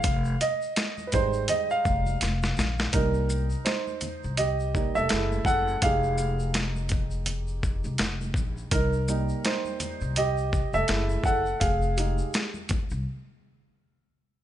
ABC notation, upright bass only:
X:1
M:4/4
L:1/16
Q:"Swing 16ths" 1/4=83
K:Fm
V:1 name="Upright bass" clef=bass
F,,,2 z4 A,,,2 z2 F,,,2 F,,,2 B,,,2 | C,,4 z3 C,,4 F,,, _G,,,2 G,,,2 | F,,,8- F,,,3 C,, F,,,2 B,,,2 | C,,4 z3 C,,4 F,,, _G,,,2 G,,,2 |
F,,,4 z3 C,, z8 |]